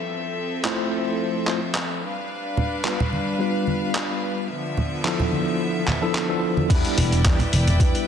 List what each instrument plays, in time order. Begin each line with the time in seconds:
Already playing: string section F3 C4 A4 E5
0.64 tine electric piano A3 C4 E4 F4 C5, clap
1.47 tine electric piano A3 C4 E4 F4 C5, clap
1.75 clap
2.02 string section G3 D4 B4 F5
2.57 low conga
2.84 tine electric piano G3 B3 D4 F4 B4, clap
3.00 low conga
3.13 high conga
3.39 tine electric piano G3 B3 D4 F4 B4
3.67 high conga
3.95 clap
4.50 string section D3 F3 B3 E5
4.77 low conga
5.04 tine electric piano F3 B3 D4 E4 A4, clap
5.20 low conga
5.32 high conga
5.88 clap, high conga, low conga
6.02 tine electric piano F3 B3 D4 E4 A4
6.15 clap
6.29 tine electric piano F3 B3 D4 E4 A4
6.57 high conga
6.69 slap bass E2, tine electric piano G3 B3 D4 E4 B4, string section E4 B4 D5 G5, kick, closed hi-hat, crash
6.85 closed hi-hat
6.98 slap bass E1, open hi-hat, low conga
7.12 slap bass E1, closed hi-hat
7.25 slap bass E2, tine electric piano G3 B3 D4 E4 B4, kick, clap, closed hi-hat
7.39 closed hi-hat, low conga
7.53 slap bass E1, open hi-hat, high conga
7.67 slap bass E1, closed hi-hat
7.79 slap bass E2, tine electric piano G3 B3 D4 E4 B4, kick, closed hi-hat
7.95 closed hi-hat